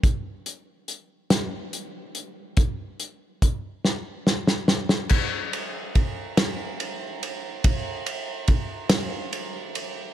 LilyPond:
\new DrumStaff \with { instrumentName = "Drums" } \drummode { \time 6/8 \tempo 4. = 47 <hh bd>8 hh8 hh8 <hh sn>8 hh8 hh8 | <hh bd>8 hh8 <hh bd>8 sn8 sn16 sn16 sn16 sn16 | <cymc bd>8 cymr8 <bd cymr>8 <cymr sn>8 cymr8 cymr8 | <bd cymr>8 cymr8 <bd cymr>8 <cymr sn>8 cymr8 cymr8 | }